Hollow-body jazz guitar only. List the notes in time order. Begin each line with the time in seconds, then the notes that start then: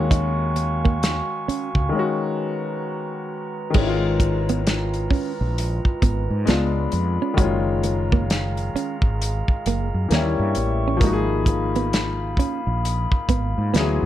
0.11 D#4
0.56 muted hollow-body jazz guitar stroke
0.85 A#3
1.48 C#4
3.75 G#3
4.20 muted hollow-body jazz guitar stroke
4.50 B3
5.11 C#4
6.03 B3
6.48 B3
6.93 muted hollow-body jazz guitar stroke
7.22 C#4
7.37 F#4
7.84 muted hollow-body jazz guitar stroke
8.13 A#3
8.76 C#4
9.67 A#3
10.12 A#3
10.58 muted hollow-body jazz guitar stroke
10.88 C#4
11.04 G#3
11.49 muted hollow-body jazz guitar stroke
11.76 B3
12.39 C#4
13.30 B3
13.74 B3